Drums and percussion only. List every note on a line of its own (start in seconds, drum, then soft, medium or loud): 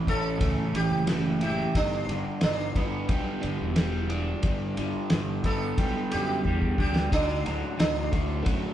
0.07 kick medium
0.07 ride medium
0.41 kick loud
0.41 ride medium
0.75 ride medium
1.07 snare loud
1.07 ride loud
1.41 ride medium
1.75 kick loud
1.75 ride loud
2.09 ride medium
2.41 snare loud
2.41 ride loud
2.76 kick medium
2.76 ride medium
3.09 kick loud
3.09 ride medium
3.43 ride medium
3.76 snare loud
3.76 ride medium
4.10 ride medium
4.43 kick loud
4.43 ride medium
4.77 ride medium
5.10 snare loud
5.10 ride medium
5.44 kick medium
5.44 ride medium
5.78 kick loud
5.78 ride medium
6.12 ride medium
6.45 kick medium
6.62 kick medium
6.78 kick medium
6.96 snare medium
7.12 kick loud
7.12 ride medium
7.46 ride medium
7.80 snare loud
7.80 ride medium
8.13 kick medium
8.13 ride medium
8.46 kick loud
8.46 ride medium